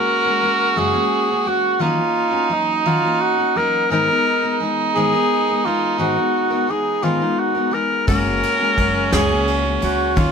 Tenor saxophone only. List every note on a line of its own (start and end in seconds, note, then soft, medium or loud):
0.00 0.79 A#4 loud
0.78 1.49 G#4 loud
1.47 1.82 F#4 medium
1.81 2.54 F4 loud
2.53 2.88 D#4 medium
2.87 3.23 F4 loud
3.21 3.58 F#4 loud
3.57 3.91 A#4 loud
3.92 4.64 A#4 loud
4.95 5.67 G#4 loud
5.65 5.99 F4 medium
5.99 6.72 F#4 loud
6.70 7.05 G#4 medium
7.03 7.41 F4 loud
7.39 7.75 F#4 medium
7.73 8.07 A#4 medium
8.08 9.08 A#4 loud
9.13 9.53 G#4 loud
9.83 10.19 F#4 medium
10.17 10.32 F4 loud